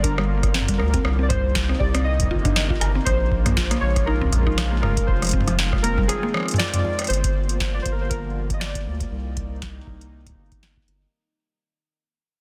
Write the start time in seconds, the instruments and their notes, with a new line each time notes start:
Already playing: analog synth bass G1, ambient pad D3 F3 G3 A#3 F4
0.03 synth arpeggio sound D4, synth keys A#4, kick, closed hi-hat
0.18 synth arpeggio sound G3, cross-stick
0.43 kick, cross-stick, closed hi-hat
0.54 synth arpeggio sound C4, snare
0.61 mid tom
0.68 synth arpeggio sound G3, kick, closed hi-hat
0.78 analog synth bass D2, synth keys A#4, cross-stick
0.94 synth arpeggio sound C4, kick, closed hi-hat
1.05 analog synth bass C2, ambient pad C3 D#3 A#3 D#4, cross-stick
1.19 synth arpeggio sound C4, synth keys D5
1.29 synth keys C5, kick, cross-stick, closed hi-hat, mid tom
1.55 kick, snare, closed hi-hat
1.69 synth arpeggio sound C4, cross-stick
1.79 analog synth bass C2, synth arpeggio sound G4, synth keys D5, kick
1.95 synth arpeggio sound C4, cross-stick, closed hi-hat
2.04 synth keys D#5
2.20 kick, closed hi-hat
2.22 kick
2.27 analog synth bass G1, kick
2.31 synth arpeggio sound F4, kick
2.36 kick
2.39 kick
2.45 synth arpeggio sound D4, kick, closed hi-hat, mid tom
2.56 cross-stick, snare
2.70 synth arpeggio sound F4, kick
2.80 analog synth bass G1, synth keys A#4, cross-stick, closed hi-hat
2.95 synth arpeggio sound C4
3.05 analog synth bass A#1, ambient pad C#3 F3 G#3 F4, synth keys C5, kick, cross-stick, closed hi-hat
3.32 kick
3.46 synth arpeggio sound A#3, cross-stick, closed hi-hat, mid tom
3.57 synth arpeggio sound F4, kick, snare
3.71 synth arpeggio sound A#3, cross-stick, closed hi-hat
3.81 analog synth bass A#1, synth keys C#5
3.96 kick, cross-stick, closed hi-hat
4.06 synth arpeggio sound D#4, synth keys A#4
4.21 synth arpeggio sound C4, kick
4.24 kick
4.27 kick
4.30 kick, cross-stick, closed hi-hat
4.33 kick
4.36 kick
4.40 kick
4.43 kick
4.47 synth arpeggio sound D#4, kick
4.58 cross-stick, snare, closed hi-hat
4.72 synth arpeggio sound A#3
4.82 analog synth bass F1, synth keys A#4, cross-stick, mid tom
4.97 kick, closed hi-hat
5.07 analog synth bass F1, ambient pad D#3 C4, synth keys C5, kick
5.22 synth arpeggio sound F3, cross-stick, closed hi-hat
5.25 closed hi-hat
5.27 closed hi-hat
5.29 closed hi-hat
5.31 synth arpeggio sound C4, kick, closed hi-hat
5.40 mid tom
5.47 synth arpeggio sound F3, cross-stick, closed hi-hat
5.59 snare
5.73 kick, cross-stick
5.82 analog synth bass F1, synth arpeggio sound A#3, synth keys A#4, closed hi-hat
5.98 synth arpeggio sound G3, kick
6.08 synth keys G#4, cross-stick, closed hi-hat
6.23 synth arpeggio sound A#3
6.34 synth arpeggio sound F3, cross-stick
6.37 cross-stick
6.43 cross-stick
6.46 cross-stick, closed hi-hat
6.51 closed hi-hat, mid tom
6.56 synth arpeggio sound F4, synth keys D5, cross-stick, snare, closed hi-hat
6.59 closed hi-hat
6.64 closed hi-hat
6.68 closed hi-hat
6.74 closed hi-hat, mid tom
6.76 mid tom
6.78 mid tom
6.80 mid tom
6.82 synth arpeggio sound F2, mid tom
6.99 cross-stick, closed hi-hat
7.02 cross-stick
7.04 cross-stick, closed hi-hat
7.07 analog synth bass G1, synth keys C5, cross-stick, closed hi-hat
7.10 ambient pad D3 F3 G3 A#3 F4, cross-stick, closed hi-hat
7.13 cross-stick, closed hi-hat
7.21 kick, cross-stick, closed hi-hat
7.49 closed hi-hat
7.60 kick, snare
7.74 synth keys D5
7.82 analog synth bass G1, synth keys C5, kick, closed hi-hat
7.92 synth keys A#4
8.01 synth keys C5
8.09 synth keys A#4, kick, closed hi-hat
8.50 synth keys D#5, kick, closed hi-hat
8.60 synth keys D5, snare
8.75 kick, closed hi-hat
8.86 analog synth bass D2
9.00 kick, closed hi-hat
9.12 analog synth bass C2, ambient pad C3 D#3 A#3 D#4
9.37 kick, closed hi-hat
9.62 kick, snare, closed hi-hat
9.87 analog synth bass C2, kick
10.01 closed hi-hat
10.27 kick, closed hi-hat
10.29 kick
10.32 kick
10.35 analog synth bass G1, kick
10.52 kick, closed hi-hat
10.63 snare
10.77 kick
10.88 analog synth bass G1, closed hi-hat